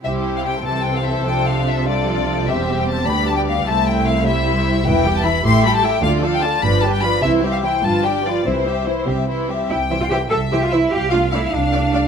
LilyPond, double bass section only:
\new Staff \with { instrumentName = "Double bass section" } { \clef bass \time 6/8 \key c \major \tempo 4. = 99 c,4. c,4. | c,2. | e,,4. d,4. | c,2. |
e,,4. a,,4. | d,4. g,,4. | c,4. g,,4. | c,4. c,4. |
c,4. c,4. | c,4. c,4. | }